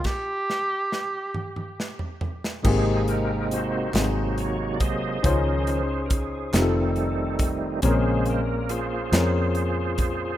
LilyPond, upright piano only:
<<
  \new Staff \with { instrumentName = "Upright piano" } { \time 6/8 \key aes \major \tempo 4. = 46 r2. | <bes c' g' aes'>4 r8 <c' ees' ges' aes'>4 r8 | <des' ees' f' c''>4 r8 <c' ees' f' g' a'>4 r8 | <c' des' aes' bes'>4 r8 <c' des' aes' bes'>4 r8 | }
  \new Staff \with { instrumentName = "Upright piano" } { \clef bass \time 6/8 \key aes \major r2. | aes,4. aes,4. | des4. r4. | bes,4. r4. | }
>>